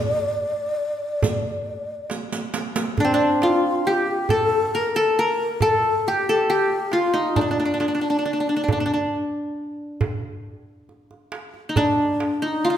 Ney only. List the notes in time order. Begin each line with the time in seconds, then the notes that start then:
Already playing: D5
2.98 D4
3.11 D4
3.43 F4
3.86 G4
4.31 A4
4.75 A#4
4.95 A4
5.19 A#4
5.64 A4
6.07 G4
6.50 G4
6.95 F4
7.17 D#4
7.39 D4
11.77 D4
12.44 F4
12.48 D#4
12.65 F4